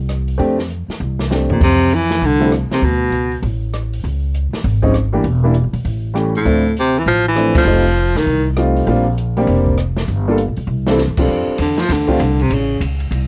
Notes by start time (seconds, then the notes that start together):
Already playing: C2
0.09 cross-stick, closed hi-hat
0.28 open hi-hat
0.38 F2 A3 C4 D4 G4, kick, open hi-hat
0.59 snare
0.70 closed hi-hat
0.88 muted upright bass stroke, snare, open hi-hat
1.00 C2
1.19 snare
1.30 A3 C4 D4 G4, snare
1.49 A#2 C3, floor tom
1.61 F2 C3, kick, crash
1.91 E3, closed hi-hat
2.11 snare
2.22 C2 D3, kick, open hi-hat
2.40 F3 G3 A3 C4 E4
2.52 cross-stick, closed hi-hat
2.70 C3, muted upright bass stroke, snare, open hi-hat
2.82 D2 B2, kick, open hi-hat
3.10 C#2, closed hi-hat
3.32 open hi-hat
3.42 A1, kick, open hi-hat
3.74 cross-stick, closed hi-hat
3.93 open hi-hat
4.04 C#2, kick, open hi-hat
4.34 closed hi-hat
4.52 muted upright bass stroke, snare, open hi-hat
4.64 G#1, kick, open hi-hat
4.82 F3 G#3 C4 C#4 D#4, kick
4.94 cross-stick, closed hi-hat
5.13 E3 G3 A#3 D4 G4
5.24 E1, kick, open hi-hat
5.43 E3 G3 A#3 D4 E4
5.54 closed hi-hat
5.64 A#1
5.73 E2, open hi-hat
5.85 A1, kick, open hi-hat
6.14 E3 G3 A3 C#4 G4, cross-stick, closed hi-hat
6.35 A2, open hi-hat
6.45 D2 F3 A3 C4 D4 E4, kick, open hi-hat
6.77 C3, closed hi-hat
6.98 E3
7.04 A1 E3 F3, kick, open hi-hat
7.28 E3
7.35 F3 A3 C4 D4 E4, cross-stick, closed hi-hat
7.55 G1 F3, kick, crash
7.65 F1 G3 A3 C4 D#4 F4
7.97 closed hi-hat
8.15 C2 D#3, snare, open hi-hat
8.27 C2, kick, open hi-hat
8.57 G3 A3 C4 D#4 F4, cross-stick, closed hi-hat
8.77 open hi-hat
8.87 A#1 G3 A#3 C4 D4 F4, kick, open hi-hat
9.18 closed hi-hat
9.37 G3 A#3 C4 D4 G4, open hi-hat
9.47 F1, kick, open hi-hat
9.67 kick
9.78 cross-stick, closed hi-hat
9.97 snare, open hi-hat
10.08 G1, kick, open hi-hat
10.28 G3 A#3 D4 F4 A4
10.38 closed hi-hat
10.48 A#1
10.57 C#2, open hi-hat
10.67 C2
10.87 G3 C4 D4 E4 A4, snare
10.98 snare
11.08 G2
11.17 C3 G3 C4 D4 F4 A4, kick, crash
11.28 F2
11.48 muted upright bass stroke
11.58 E2 D3, kick, hi-hat pedal, ride
11.78 F3, snare, ride
11.89 D2 D3, kick, snare, ride
12.07 A3 C4 D4 F4 G4, kick
12.20 C2, hi-hat pedal, ride
12.39 C3, ride
12.50 A1, kick, ride
12.54 C#3
12.80 C#2, kick, hi-hat pedal, ride
13.00 ride
13.11 C2, kick, ride